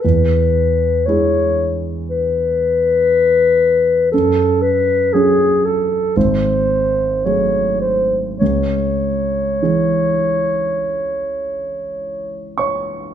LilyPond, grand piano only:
<<
  \new Staff \with { instrumentName = "Grand piano" } { \time 4/4 \key cis \minor \tempo 4 = 57 r1 | r1 | r2. r8 <cis'' cis'''>8 | }
  \new Staff \with { instrumentName = "Grand piano" } { \clef bass \time 4/4 \key cis \minor e,4 <gis e' gis'>2. | fis,4 <fis cis' a'>4 gis,,4 <fis a gis'>4 | cis,4 <e gis gis'>2. | }
>>